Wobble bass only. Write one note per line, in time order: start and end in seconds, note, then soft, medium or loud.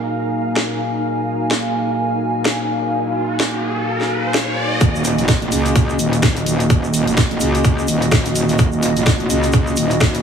4.81 4.93 D#1 loud
4.95 5.16 D#1 loud
5.18 5.50 F1 medium
5.52 5.98 C#2 loud
5.99 6.45 D#1 loud
6.46 6.68 D#1 loud
6.70 7.05 D#1 loud
7.07 7.39 F1 loud
7.41 7.87 C#2 loud
7.88 8.34 D#1 loud
8.35 8.57 D#1 medium
8.59 8.71 D#1 loud
8.73 8.94 D#1 loud
8.96 9.28 F1 medium
9.30 9.76 C#2 loud
9.77 10.22 D#1 loud